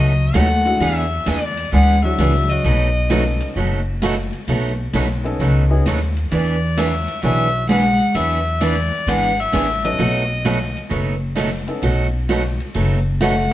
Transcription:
Already playing: C#2 B2 F#3 A3 D#4 F#4 D#5
0.34 D#2 B2 F#3 A3 D#4 F#4 F#5, snare, hi-hat pedal, ride
0.65 G#3 D4 E4 F#4, ride
0.80 E2 E3 F#3 B3 D4 G#4 E5, ride
1.26 E2 E3 B3 D4 G#4 D5, snare, hi-hat pedal, ride
1.57 ride
1.72 D2 E3 G#3 B3 D4 G#4 F#5
2.02 F#3 G#3 D4 E4 F#4 E5
2.18 C#2 E3 B3 D4 G#4, snare, hi-hat pedal, ride
2.49 F#3 D#5, ride
2.64 B1 B2 F#3 A3 D#4 F#4, ride
3.09 B2 F#3 A3 B3 C#4 D#4 F#4 A4, snare, hi-hat pedal, ride
3.40 ride
3.56 F#1 B2 F#3 A3 D#4 F#4
4.02 B2 F#3 A3 D#4 F#4, snare, hi-hat pedal, ride
4.33 ride
4.48 B1 B2 F#3 A3 D#4 F#4, ride
4.93 B1 B2 F#3 A3 D#4 F#4, snare, hi-hat pedal, ride
5.23 B3 C#4 D#4 A4, ride
5.39 C#2 B2 F#3 A3 D#4 F#4, ride
5.69 B3 C#4 D#4 G#4
5.86 D#2 B2 F#3 A3 D#4 F#4, snare, hi-hat pedal, ride
6.17 ride
6.31 E2 E3 B3 D4 G#4 D5, ride
6.77 E3 F#3 B3 D4 G#4 E5, snare, hi-hat pedal, ride
7.08 ride
7.22 B1 E3 F#3 B3 D4 G#4 E5, ride
7.69 E3 G#3 B3 D4 G#4 F#5, snare, hi-hat pedal, ride
8.14 E2 E3 F#3 B3 D4 G#4 E5, ride
8.61 E3 B3 D4 G#4 D5, snare, hi-hat pedal, ride
9.07 G#1 E3 G#3 B3 D4 G#4 F#5, ride
9.40 F#3 E5
9.52 A1 E3 B3 D4 G#4, snare, hi-hat pedal, ride
9.84 F#3 B3 C#4 D#4 A4 D#5, ride
9.99 B1 B2 F#3 A3 D#4 F#4, ride
10.45 B2 F#3 A3 D#4 F#4, snare, hi-hat pedal, ride
10.77 ride
10.89 F#1 B2 F#3 A3 D#4 F#4, ride
11.35 B2 F#3 A3 D#4 F#4, snare, hi-hat pedal, ride
11.67 B3 C#4 D#4 A4, ride
11.82 B1 B2 F#3 A3 D#4 F#4, ride
12.29 B2 F#3 A3 D#4 F#4, snare, hi-hat pedal, ride
12.60 ride
12.74 F#1 B2 F#3 A3 D#4 F#4, ride
13.21 B2 F#3 A3 D#4 F#4 F#5, snare, hi-hat pedal, ride

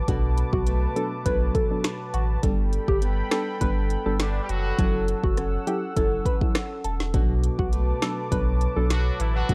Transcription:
Already playing: F#3 A3 B4 A5 D6
0.08 B1 B2 F#3 B3 D4 F#4 A4, kick, closed hi-hat
0.38 closed hi-hat
0.53 B1 F#4, kick
0.67 A3, closed hi-hat
0.96 F#3 B3 D4 A4, closed hi-hat
1.25 B1 F#3 B3 D4 A4 B4, kick, closed hi-hat
1.55 A4, kick, closed hi-hat
1.70 F#3 B3 D4 A4
1.84 finger snap, snare, closed hi-hat
2.14 A1 F#4, closed hi-hat
2.43 G1 G3 B3 D4 A4 G5 B5, kick, closed hi-hat
2.73 closed hi-hat
2.88 G1 G4, kick
3.02 B3, closed hi-hat
3.31 G3 B3 D4 A4, finger snap, snare, closed hi-hat
3.61 G1 G3 B3 D4 A4 B4, kick, closed hi-hat
3.90 closed hi-hat
4.06 G1 G3 B3 D4 A4
4.20 D3 D4, finger snap, snare, closed hi-hat
4.43 G3 G4
4.49 F#1 F#3 F#4, closed hi-hat
4.78 F#1 F#3 C#4 E4 A4 F#5 E6, kick, closed hi-hat
5.08 closed hi-hat
5.24 F#1 F#4, kick
5.37 C#4, cross-stick, closed hi-hat
5.67 F#3 C#4 E4 G4 A4, closed hi-hat
5.96 F#1 F#3 C#4 E4 A4, kick, closed hi-hat
6.26 B4, kick, closed hi-hat
6.41 F#3 C#4 E4 A4, kick
6.55 finger snap, cross-stick, snare, closed hi-hat
6.84 E1 A4, closed hi-hat
7.00 snare
7.14 B1 B2 F#3 B3 D4 F#4 A4 B4 A5 D6, kick, closed hi-hat
7.44 closed hi-hat
7.59 B1 F#4, kick
7.73 A3, closed hi-hat
8.02 F#3 B3 D4 A4, finger snap, snare, closed hi-hat
8.31 B1 F#3 B3 D4 A4 B4, kick, closed hi-hat
8.61 closed hi-hat
8.76 B1 F#3 B3 D4 A4
8.90 F#3 F#4, finger snap, snare, closed hi-hat
9.20 A1 E3 E4, closed hi-hat
9.36 F#3 F#4
9.49 B1 B2 F#3 B3 D4 F#4 A4, kick, closed hi-hat

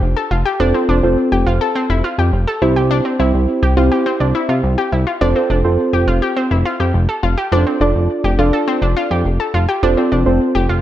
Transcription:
Already playing: D4 F4 G4 A4 C5
0.02 F1
0.17 A4
0.31 F1 F4
0.45 G4
0.60 F1 C4 D4 F4 A4 C5
0.74 C4 F4 A4 C5
0.89 F1 D4
1.03 F1 C4 F4 A4 C5
1.32 F1 G4
1.46 F1 F4
1.61 A4
1.75 C4
1.90 F1 E4
2.04 F4
2.18 F2 G4
2.33 F1
2.47 A4
2.62 C2 C4 E4 G4 C5
2.76 G4
2.91 D4
3.05 C4
3.19 C2 C4 E4 G4 C5
3.34 C2
3.63 C2 G4
3.77 C2 C4 E4 F4 G4 C5
3.92 G4
4.06 C4
4.20 C2 D4
4.35 E4
4.49 C3 F4
4.63 C2
4.78 G4
4.92 C2 E4
5.07 F4
5.21 F1 C4 D4 F4 A4 C5
5.36 C4 F4 A4 C5
5.50 F1 D4
5.64 F1 C4 F4 A4 C5
5.93 F1 G4
6.08 F1 F4
6.22 G4
6.37 C4
6.51 F1 E4
6.65 F4
6.80 F2 G4
6.94 F1
7.09 A4
7.23 F1 F4
7.38 G4
7.52 F1 D4 F4 A4 C5
7.67 C4
7.81 F1 D4 F4 A4 D5
7.95 F1
8.24 F1 G4
8.39 F1 D4 F4 A4 D5
8.53 A4
8.68 C4
8.82 F1 D4
8.97 F4
9.11 F2 G4
9.25 F1
9.40 A4
9.54 F1 F4
9.69 G4
9.83 F1 C4 D4 F4 A4 C5
9.97 C4 F4 A4 D5
10.12 F1 D4
10.26 F1 C4 F4 A4 C5
10.55 F1 G4
10.69 F1 F4

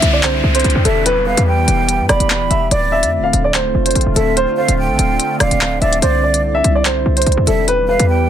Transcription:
Already playing: D3 G3 C4 E4, downlifter
0.02 C2, closed hi-hat
0.13 D5
0.23 C5, clap, closed hi-hat
0.44 C2
0.55 C5, closed hi-hat
0.60 closed hi-hat
0.64 C2, closed hi-hat
0.70 closed hi-hat
0.75 E2
0.85 E1 A4 E5, closed hi-hat
1.06 E3 B3 G4 B4, closed hi-hat
1.26 B4 F5
1.37 E2, closed hi-hat
1.47 G5
1.68 E1, closed hi-hat
1.89 closed hi-hat
2.00 G2
2.09 E1 D5 B5, cross-stick, closed hi-hat
2.20 E1, closed hi-hat
2.30 clap
2.41 D1
2.51 E1 E5, closed hi-hat
2.71 D1 D3 A3 C4 F4 D5, closed hi-hat
2.92 E5
3.03 F2, closed hi-hat
3.18 D1
3.24 F5
3.33 D1, closed hi-hat
3.44 D5
3.54 C5, clap, closed hi-hat
3.65 C1
3.75 F1
3.86 C5, closed hi-hat
3.91 closed hi-hat
3.95 A1, closed hi-hat
4.01 closed hi-hat
4.06 D1
4.16 D1 A4 E5, closed hi-hat
4.37 C5, closed hi-hat
4.57 C5 F5
4.68 D1, closed hi-hat
4.79 G5
4.89 A1
4.99 D1, closed hi-hat
5.20 closed hi-hat
5.40 D1 D5 F5, cross-stick, closed hi-hat
5.51 D1, closed hi-hat
5.61 clap
5.81 D1 D5 E5, closed hi-hat
5.93 closed hi-hat
6.02 C2 G3 E4 C5 D5, closed hi-hat
6.23 D5
6.34 closed hi-hat
6.55 E5
6.64 C2, closed hi-hat
6.75 D5
6.85 C5, clap, closed hi-hat
7.06 C2
7.17 C5, closed hi-hat
7.22 closed hi-hat
7.26 C2, closed hi-hat
7.32 closed hi-hat
7.37 E2
7.47 E1 A4 E5, closed hi-hat
7.68 E3 B3 G4 B4, closed hi-hat
7.88 B4 F5
8.00 E2, closed hi-hat
8.09 G5

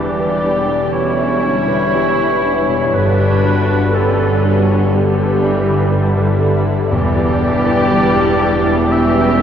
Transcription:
Already playing: E1 E2 B2 D3 E3 G3 B3 D4 G4 B4 D5 B5
0.18 G4 B4
0.44 D4
0.67 G3 B5
0.91 B2 E3 C#4 E4 C#5
1.17 G3 G4
1.43 D3 G3
1.67 B2 B4
1.92 E3 G3 B3 E4 G4
2.17 B2 B4
2.43 E3 G3 D4
2.68 B2 G3
2.93 G1 G2 D3 G3 D4 B4
3.18 D3 G3
3.44 G3 D4 F#4
3.70 B4
3.94 E3 B3 C#4 D4 G4 A4 B4
4.18 G4 B4
4.44 D3 F#4
4.68 G3 B5
4.93 D3 G3 B3 G4
5.18 G3 G4
5.42 E3 D4
5.67 D3 B4
5.92 D3 G3 E4 G4
6.17 D3 B4
6.42 D3 G3 D4
6.67 D3 G3
6.91 E1 E2 E3 G3 B3 D4 E4 G4 D5
7.17 B2 G3
7.41 E3 G3 E4
7.66 E4 B4
7.91 E3 G3 B3 G4 B4
8.16 G4 B4
8.41 G3 E4 E5
8.66 G3 B5
8.90 B2 E3 C#4 G4 E5
9.15 G3 G4

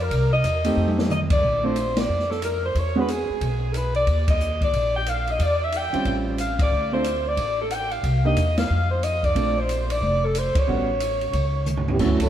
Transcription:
0.01 A#4
0.11 C2, kick, ride
0.33 D#5
0.44 E2, hi-hat pedal, ride
0.64 A3 C4 D#4 G4, ride
0.76 F2
0.88 high tom
0.99 snare
1.10 D#5, hi-hat pedal, mid tom
1.30 D5, kick, ride
1.43 A#1
1.63 A3 C4 D4 F4 C5
1.76 hi-hat pedal, ride
1.97 D5, snare, ride
2.08 F2
2.19 snare
2.31 A4, snare
2.42 A#4, hi-hat pedal, ride
2.65 C5
2.75 E2 C#5, kick, ride
2.96 G#3 B3 D4 F#4 B4
3.08 G#4, hi-hat pedal, ride
3.29 muted upright bass stroke
3.41 B1, kick, ride
3.73 A#4 B4, hi-hat pedal, ride
3.95 D5, ride
4.07 D#2, kick, ride
4.28 D#5, kick, ride
4.40 hi-hat pedal
4.61 D5, kick, ride
4.73 A#1, kick, ride
4.96 G5
5.06 F5, hi-hat pedal, ride
5.27 D#5, ride
5.39 E2 D5, kick, ride
5.62 E5
5.72 G5, hi-hat pedal, ride
5.93 G3 C4 C#4 F4, muted upright bass stroke, ride
6.05 A1, kick, ride
6.38 F5, hi-hat pedal, ride
6.59 D5, kick, ride
6.72 D2
6.93 A3 C4 D4 F4 C5
7.04 hi-hat pedal, ride
7.27 D5
7.37 A1, kick, ride
7.61 A4
7.70 G5, hi-hat pedal, ride
7.91 F5, ride
8.03 C2, kick, ride
8.25 A#3 D4 D#4 G4 D#5
8.36 E2, hi-hat pedal, ride
8.57 F5, snare, ride
8.70 F2
8.91 C5
9.03 D#5, hi-hat pedal, ride
9.23 D5, kick, ride
9.35 A#1 A3 C4 D4 F4, kick, ride
9.58 C5
9.69 hi-hat pedal, ride
9.90 D5, ride
10.02 F1, kick
10.25 A4
10.35 C5, hi-hat pedal, ride
10.55 C#5, muted upright bass stroke, kick, ride
10.67 A1 G3 B3 C#4 F#4
11.00 hi-hat pedal, ride
11.21 ride
11.33 C#2, kick, ride
11.66 hi-hat pedal, mid tom
11.77 floor tom
11.88 E3 B3 C#4 G4, floor tom
11.99 D2 D3 E3 F#3 A3 C#4 E4 F#4, kick, crash
12.20 F#3 C#4 E4 A4, kick, ride

